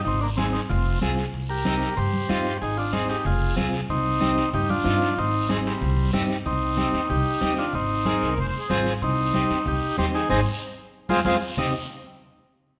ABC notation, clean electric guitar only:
X:1
M:4/4
L:1/8
Q:1/4=187
K:Cm
V:1 name="Clean electric guitar"
z2 [CEA] z3 [CFA] z | z2 [CEG] z3 [CEF] z | z2 [CEA] z3 [CFA] z | z2 [CEG] z3 [CEF] z |
z2 [CEA] z3 [CEG] z | z2 [CEG] z3 [CEG] z | z2 [CEA] z3 [CFA] z | z2 [CEG] z3 [CEG] z |
[CEA] z4 [A,CF] [A,CF] z | [CEG] z6 z |]